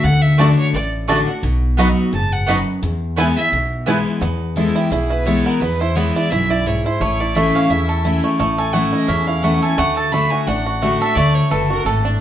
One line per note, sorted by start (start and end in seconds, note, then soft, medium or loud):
0.04 0.53 D2 loud
0.04 0.37 D3 loud
0.04 0.24 F#5 loud
0.22 0.40 E5 loud
0.38 0.72 D3 medium
0.38 0.48 A3 medium
0.38 0.47 A3 medium
0.38 0.72 A3 medium
0.38 0.48 D4 medium
0.38 0.73 D4 loud
0.38 0.48 F#4 medium
0.38 0.73 F#4 medium
0.38 0.49 D5 medium
0.38 0.57 D5 medium
0.38 0.49 A5 loud
0.58 0.73 C#5 loud
0.73 1.22 A1 medium
0.73 1.41 A2 medium
0.73 0.85 D5 medium
1.08 1.27 D3 medium
1.08 1.18 A3 medium
1.08 1.17 A3 medium
1.08 1.27 A3 medium
1.08 1.17 D4 medium
1.08 1.28 D4 medium
1.08 1.18 F#4 loud
1.08 1.18 F#4 medium
1.08 1.26 F#4 loud
1.08 1.18 D5 loud
1.08 1.19 A5 loud
1.08 1.26 A5 medium
1.27 1.44 D4 soft
1.27 1.43 F#4 medium
1.27 1.36 F#5 medium
1.43 1.92 B1 loud
1.43 2.10 B2 loud
1.77 2.11 F#3 medium
1.77 1.88 B3 medium
1.77 1.87 B3 medium
1.77 2.12 B3 loud
1.77 1.87 D#4 medium
1.77 2.12 D#4 medium
1.77 1.88 F#4 medium
1.77 1.87 F#4 medium
1.77 2.12 F#4 loud
1.77 1.88 D#5 loud
1.77 1.88 B5 loud
2.12 2.62 F#1 medium
2.12 2.46 G#2 medium
2.12 2.34 A5 loud
2.33 2.48 F#5 loud
2.46 2.81 F#2 medium
2.46 2.57 B3 medium
2.46 2.57 D#4 medium
2.46 2.58 F#4 loud
2.46 2.57 F#4 medium
2.46 2.58 D#5 loud
2.46 2.58 B5 loud
2.82 3.32 E2 loud
2.82 3.49 E2 medium
3.16 3.36 E3 medium
3.16 3.36 G#3 medium
3.16 3.27 B3 medium
3.16 3.26 B3 medium
3.16 3.36 B3 loud
3.16 3.27 E4 loud
3.16 3.27 E4 medium
3.16 3.35 E4 medium
3.16 3.27 B4 loud
3.16 3.35 G#5 loud
3.16 3.28 G#5 loud
3.36 3.53 B3 soft
3.36 3.52 E4 medium
3.36 3.46 E5 loud
3.52 4.01 B1 medium
3.52 4.19 B2 loud
3.86 4.20 E3 loud
3.86 4.21 G#3 medium
3.86 3.97 B3 loud
3.86 3.96 B3 medium
3.86 4.21 B3 medium
3.86 3.97 E4 loud
3.86 3.96 E4 medium
3.86 4.21 E4 medium
3.86 3.97 B4 loud
3.86 3.97 G#5 loud
4.21 4.70 E2 loud
4.21 4.89 E2 loud
4.21 5.46 B3 medium
4.56 4.90 E3 medium
4.56 4.90 G#3 medium
4.56 4.90 B3 medium
4.56 4.75 E4 medium
4.56 4.91 E4 medium
4.56 4.74 A4 medium
4.75 4.92 E4 medium
4.75 4.93 G4 medium
4.91 5.40 B1 medium
4.91 5.58 B2 medium
4.91 5.10 E4 medium
4.91 5.12 G#4 medium
5.10 5.27 E4 medium
5.10 5.27 B4 loud
5.25 5.59 E3 medium
5.25 5.60 G#3 medium
5.25 5.60 B3 loud
5.25 5.81 E4 medium
5.25 5.60 E4 medium
5.25 5.45 C#5 medium
5.45 5.61 B3 medium
5.45 5.62 A#4 medium
5.60 6.10 E2 loud
5.60 6.28 E2 medium
5.60 5.95 B3 medium
5.60 5.82 B4 medium
5.80 6.16 E4 medium
5.80 5.97 C5 loud
5.96 6.29 E3 medium
5.96 6.29 G#3 medium
5.96 6.46 B3 medium
5.96 6.30 B3 medium
5.96 6.30 E4 loud
5.96 6.14 C#5 medium
6.15 6.32 E4 medium
6.15 6.32 D5 loud
6.31 6.80 B1 medium
6.31 6.64 F#2 medium
6.31 6.50 E4 medium
6.31 6.51 E5 medium
6.50 6.67 E4 medium
6.50 6.68 D5 loud
6.66 6.99 G#2 medium
6.66 6.85 E4 medium
6.66 6.84 C#5 medium
6.85 7.20 E4 medium
6.85 7.03 C5 medium
7.00 7.49 A1 medium
7.00 7.67 A2 loud
7.00 7.36 A3 medium
7.00 7.22 C#5 loud
7.20 7.70 E4 medium
7.20 7.37 D5 medium
7.35 7.68 E3 medium
7.35 7.69 A3 loud
7.35 8.23 A3 medium
7.35 7.69 C#4 loud
7.35 7.69 E4 medium
7.35 7.56 E5 medium
7.55 8.02 C#4 medium
7.55 7.71 F5 loud
7.70 8.36 E2 medium
7.70 8.19 E2 medium
7.70 8.04 E4 medium
7.70 8.23 E5 medium
7.89 8.58 A4 medium
8.04 8.37 E3 medium
8.04 8.38 A3 medium
8.04 8.38 C#4 loud
8.04 8.55 E4 medium
8.04 8.39 E4 medium
8.24 8.39 A3 medium
8.39 8.88 A1 loud
8.39 9.05 A2 medium
8.39 8.73 A3 medium
8.58 9.62 A4 medium
8.58 8.75 G#5 medium
8.73 9.07 E3 medium
8.73 9.43 A3 medium
8.73 9.07 A3 medium
8.73 9.08 C#4 loud
8.73 9.08 E4 loud
8.73 8.92 F#5 medium
8.93 9.26 E4 medium
8.93 9.09 D#5 loud
9.08 9.57 E2 medium
9.08 9.75 E2 loud
9.08 9.58 C#4 medium
9.08 9.29 E5 medium
9.27 9.75 E4 medium
9.27 9.44 F5 medium
9.43 9.61 E3 medium
9.43 9.61 A3 medium
9.43 9.78 A3 medium
9.43 9.62 C#4 medium
9.43 9.60 E4 loud
9.43 9.62 F#5 medium
9.61 9.78 C#4 soft
9.61 9.77 E4 medium
9.61 9.97 A4 medium
9.61 9.80 G#5 loud
9.78 10.27 D2 medium
9.78 10.10 D3 medium
9.78 10.13 A3 medium
9.78 9.96 F#5 loud
9.96 11.01 A4 medium
9.96 10.14 A5 loud
10.12 10.45 D3 medium
10.12 10.46 A3 loud
10.12 10.63 A3 medium
10.12 10.46 D4 medium
10.12 10.46 F#4 loud
10.12 10.32 B5 loud
10.31 10.66 F#4 medium
10.31 10.49 G#5 loud
10.47 10.96 A1 medium
10.47 11.13 A2 medium
10.47 10.97 D4 medium
10.47 10.99 F#5 medium
10.66 11.70 F#4 medium
10.81 11.00 D3 medium
10.81 11.00 A3 medium
10.81 11.16 A3 medium
10.81 11.01 D4 medium
10.81 10.99 F#4 medium
11.00 11.17 D4 soft
11.00 11.15 F#4 medium
11.00 11.48 A4 medium
11.00 11.17 E5 loud
11.15 11.40 D2 medium
11.15 11.49 D3 loud
11.15 11.66 A3 medium
11.15 11.36 D5 loud
11.34 11.52 C#5 medium
11.50 11.80 F#1 medium
11.50 11.69 D3 medium
11.50 11.69 A3 medium
11.50 11.69 D4 medium
11.50 11.68 F#4 medium
11.50 11.85 A4 medium
11.50 11.69 B4 medium
11.69 11.86 D4 soft
11.69 11.85 F#4 medium
11.69 12.21 F#4 medium
11.69 11.87 A#4 loud
11.85 12.15 G#1 medium
11.85 12.21 A2 loud
11.85 12.03 A4 medium
11.85 12.20 A4 medium
12.03 12.21 D4 medium